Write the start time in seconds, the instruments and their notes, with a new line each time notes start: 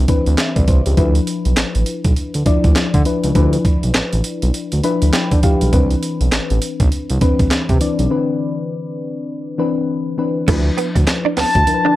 Already playing: fm electric piano E3 C4 D4 B4
0.08 fm electric piano E3 C4 D4 B4, kick, closed hi-hat
0.26 analog synth bass D2, closed hi-hat
0.38 fm electric piano E5, snare, clap, closed hi-hat
0.56 analog synth bass C2, fm electric piano D5, kick, closed hi-hat
0.68 analog synth bass C2, fm electric piano C5, kick, closed hi-hat
0.86 analog synth bass C#2, fm electric piano G4, closed hi-hat
0.97 analog synth bass D2, fm electric piano F3 D4 E4 B4, kick, closed hi-hat
1.15 closed hi-hat
1.27 closed hi-hat
1.45 analog synth bass B1, closed hi-hat
1.57 analog synth bass A1, snare, clap, closed hi-hat
1.75 analog synth bass A1, closed hi-hat
1.86 closed hi-hat
2.04 analog synth bass B1, kick, closed hi-hat
2.16 closed hi-hat
2.34 analog synth bass D2, closed hi-hat
2.45 fm electric piano F3 D4 E4 D5, kick, closed hi-hat
2.64 analog synth bass D2, kick, closed hi-hat
2.76 snare, clap, closed hi-hat
2.94 analog synth bass D3, kick, closed hi-hat
3.05 fm electric piano F3 D4 E4 B4, closed hi-hat
3.24 analog synth bass C#2, closed hi-hat
3.35 analog synth bass D2, fm electric piano F3 D4 E4 B4, kick, closed hi-hat
3.53 closed hi-hat
3.65 kick, closed hi-hat
3.83 analog synth bass B1, closed hi-hat
3.94 analog synth bass A1, snare, clap, closed hi-hat
4.13 analog synth bass A1, closed hi-hat
4.24 closed hi-hat
4.42 analog synth bass B1, closed hi-hat
4.54 closed hi-hat
4.72 analog synth bass D2, closed hi-hat
4.83 fm electric piano F3 D4 E4 B4 B5, closed hi-hat
5.02 analog synth bass D2, closed hi-hat
5.13 fm electric piano G5, snare, clap, closed hi-hat
5.31 analog synth bass D3, kick, closed hi-hat
5.43 fm electric piano F3 D4 E4 G4 F5, kick, closed hi-hat
5.61 analog synth bass B1, closed hi-hat
5.73 analog synth bass C2, fm electric piano D#3 C4 D4 B4, kick, closed hi-hat
5.79 fm electric piano E3
5.91 closed hi-hat
6.03 closed hi-hat
6.21 analog synth bass B1, closed hi-hat
6.32 analog synth bass A1, snare, clap, closed hi-hat
6.50 analog synth bass A1, closed hi-hat
6.62 closed hi-hat
6.80 analog synth bass B1, kick, closed hi-hat
6.92 closed hi-hat
7.10 analog synth bass C2, closed hi-hat
7.21 fm electric piano E3 C4 D4 B4, kick, closed hi-hat
7.39 analog synth bass C2, kick, closed hi-hat
7.51 snare, clap, closed hi-hat
7.69 analog synth bass C3, kick, closed hi-hat
7.80 fm electric piano E3 C4 D4 D5, closed hi-hat
7.99 analog synth bass B1, closed hi-hat
8.10 fm electric piano D3 C4 D4 B4
8.17 fm electric piano E3
9.58 fm electric piano E3 C4 D4 B4
10.18 fm electric piano E3 C4 D4 B4
10.48 analog synth bass D2, fm electric piano E3 D4 E4 B4, clean electric guitar A3, kick, closed hi-hat, crash
10.54 fm electric piano F3
10.78 clean electric guitar B3, closed hi-hat
10.95 analog synth bass D2, muted clean electric guitar stroke, kick, closed hi-hat
11.07 muted clean electric guitar stroke, snare, clap, closed hi-hat
11.25 clean electric guitar D4
11.37 analog synth bass D2, clean electric guitar B3, soft synth lead A5, snare, open hi-hat
11.55 analog synth bass D2, kick, closed hi-hat
11.66 analog synth bass D3, fm electric piano F3 D4 E4 A#4, closed hi-hat
11.74 fm electric piano B4
11.85 analog synth bass D3, clean electric guitar D4